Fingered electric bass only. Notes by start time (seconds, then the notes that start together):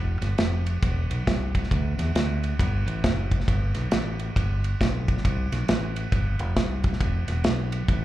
Already playing: F1
0.21 G1
0.39 F1
0.82 E1
1.10 B1
1.27 C2
1.71 D2
1.98 E2
2.15 D2
2.60 G1
2.86 A1
3.04 F#1
3.48 G1
3.76 B1
3.92 A1
4.36 G1
4.81 B1
5.25 C2
5.52 B1
5.69 A1
6.12 G1
6.40 F1
6.57 C2
7.01 F1
7.28 E1
7.44 B1
7.88 A1